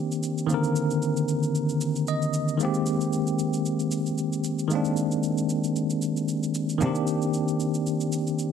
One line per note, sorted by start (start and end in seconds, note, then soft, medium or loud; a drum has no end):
0.00 0.44 D#3 medium
0.00 0.45 A#3 medium
0.00 0.46 C4 medium
0.00 0.47 D4 medium
0.00 0.48 G4 medium
0.12 shaker medium
0.23 shaker medium
0.38 shaker soft
0.47 2.55 D#3 medium
0.47 2.56 A#3 medium
0.47 2.57 C4 medium
0.47 shaker medium
0.52 2.58 D3 medium
0.52 2.58 A#4 medium
0.64 shaker soft
0.76 shaker medium
0.91 shaker soft
1.02 shaker medium
1.17 shaker medium
1.29 shaker medium
1.43 shaker medium
1.55 shaker medium
1.69 shaker soft
1.81 shaker medium
1.96 shaker soft
2.08 2.57 D#5 medium
2.08 shaker medium
2.22 shaker soft
2.34 shaker medium
2.48 shaker soft
2.57 4.65 D#3 medium
2.57 4.66 G#3 medium
2.57 4.67 A#3 medium
2.57 shaker medium
2.63 4.68 C4 medium
2.63 4.69 G4 medium
2.74 shaker soft
2.86 shaker medium
3.01 shaker medium
3.13 shaker medium
3.27 shaker medium
3.39 shaker medium
3.53 shaker medium
3.66 shaker medium
3.80 shaker soft
3.92 shaker medium
4.06 shaker soft
4.18 shaker medium
4.33 shaker soft
4.44 shaker medium
4.59 shaker medium
4.68 6.76 D#3 medium
4.68 6.77 G#3 medium
4.68 6.78 A#3 medium
4.68 shaker medium
4.73 6.79 C4 medium
4.73 6.80 D4 medium
4.85 shaker medium
4.97 shaker medium
5.11 shaker soft
5.23 shaker medium
5.38 shaker medium
5.50 shaker medium
5.64 shaker medium
5.76 shaker medium
5.90 shaker soft
6.02 shaker loud
6.17 shaker soft
6.28 shaker medium
6.43 shaker medium
6.55 shaker loud
6.69 shaker medium
6.78 6.89 C3 medium
6.78 8.52 D#3 medium
6.78 8.52 A#3 medium
6.78 8.52 C4 medium
6.78 shaker medium
6.84 8.52 D4 medium
6.84 8.52 G4 medium
6.95 shaker medium
7.07 shaker loud
7.22 shaker medium
7.34 shaker medium
7.48 shaker medium
7.60 shaker medium
7.74 shaker medium
7.87 shaker medium
8.01 shaker medium
8.13 shaker medium
8.27 shaker soft
8.39 shaker medium